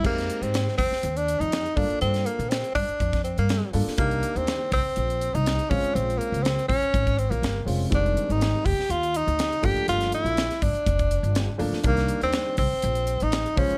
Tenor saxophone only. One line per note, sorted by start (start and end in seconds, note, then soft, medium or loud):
0.06 0.44 A#3 medium
0.42 0.77 C4 medium
0.78 1.18 C4 loud
1.17 1.41 D4 medium
1.40 1.77 D#4 loud
1.76 2.01 D4 loud
2.01 2.28 C4 loud
2.26 2.51 A#3 medium
2.49 2.74 C4 medium
2.75 3.21 D4 loud
3.24 3.36 C4 medium
3.39 3.72 A#3 medium
3.98 4.39 A#3 medium
4.37 4.72 C4 loud
4.73 5.36 C4 loud
5.34 5.71 D#4 loud
5.70 5.96 C#4 loud
5.94 6.20 C4 loud
6.18 6.44 A#3 medium
6.43 6.67 C4 medium
6.68 7.20 C#4 loud
7.18 7.32 C4 medium
7.30 7.67 A#3 medium
7.95 8.33 D4 loud
8.31 8.67 D#4 medium
8.65 8.92 G4 loud
8.91 9.18 F4 loud
9.17 9.67 D#4 loud
9.65 9.88 G4 loud
9.89 10.12 F4 loud
10.14 10.63 E4 loud
10.62 11.60 D4 medium
11.86 12.21 A#3 medium
12.23 12.57 C4 medium
12.58 13.24 C4 loud
13.22 13.59 D#4 loud
13.58 13.78 C#4 loud